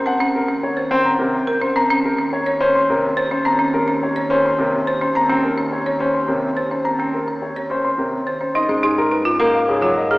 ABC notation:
X:1
M:3/4
L:1/16
Q:1/4=106
K:Bbm
V:1 name="Grand piano"
g z B z d z c b B z2 c | b z B z d z c c' B z2 c | b z B z d z c c' B z2 c | b z B z d z c c' B z2 c |
b z B z d z c c' B z2 c | [K:G#dor] d z G A B z A e G z d A |]
V:2 name="Marimba"
C D z D z c z4 B D | C D z D z d z4 c D | C D z D z d z4 c D | C D z D z d z4 c D |
C D z D z d z4 c D | [K:G#dor] D C D z D E A z2 E z G |]
V:3 name="Grand piano"
z6 C z C, z3 | z6 D z C, z3 | z6 D z C, z3 | z C z4 D z C, z3 |
z C z4 D z C, z3 | [K:G#dor] z G, z4 A, z C, F, z2 |]
V:4 name="Double bass" clef=bass
E,,12 | E,,12- | E,,12- | E,,12- |
E,,12 | [K:G#dor] G,,12 |]